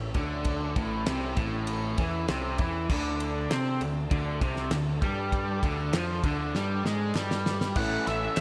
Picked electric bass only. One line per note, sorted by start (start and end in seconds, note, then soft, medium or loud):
0.00 0.14 A1 medium
0.15 0.72 D2 medium
0.76 1.05 A1 loud
1.08 1.36 C2 medium
1.37 1.94 A1 medium
1.98 2.27 E2 medium
2.30 2.58 C2 medium
2.59 2.87 E2 loud
2.89 3.46 D2 loud
3.50 3.79 C3 medium
3.81 4.09 D2 medium
4.11 4.39 D2 loud
4.41 4.70 C2 loud
4.72 5.00 D2 medium
5.02 5.59 G2 medium
5.63 5.91 D2 medium
5.93 6.22 F2 medium
6.23 6.52 D2 medium
6.55 6.83 G2 medium
6.85 7.13 G#2 medium
7.15 7.71 G2 medium
7.76 7.96 A1 medium
8.07 8.27 A1 medium